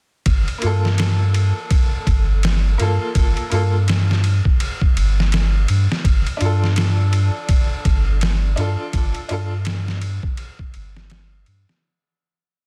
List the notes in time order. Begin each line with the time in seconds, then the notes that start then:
0.26 G1, kick, ride
0.48 ride
0.58 A#3 F4, ride
0.63 G2 A4
0.85 snare
0.98 snare, ride
1.34 ride
1.71 kick, ride
2.07 G1, kick, ride
2.43 snare, ride
2.78 G2 A#3 F4, ride
2.82 A4
3.15 G1, kick, ride
3.37 ride
3.50 G2 A#3 F4 A4, ride
3.88 snare, ride
4.11 snare
4.24 ride
4.45 kick
4.60 ride
4.81 kick
4.96 G1, ride
5.20 snare
5.32 snare, ride
5.68 G2, ride
5.92 snare
6.04 G1, kick, ride
6.27 ride
6.37 G2 D4 F4, ride
6.45 A4
6.64 snare
6.76 snare, ride
7.13 ride
7.49 kick, ride
7.85 G1, kick, ride
8.21 snare, ride
8.56 G2 D4 F4, ride
8.60 A4
8.93 G1, kick, ride
9.15 ride
9.28 G2 D4 F4, ride
9.33 A4
9.65 snare, ride
9.88 snare
10.02 ride
10.23 kick
10.37 ride
10.59 kick
10.74 G1, ride
10.97 snare
11.10 snare, ride
11.46 G2, ride
11.69 snare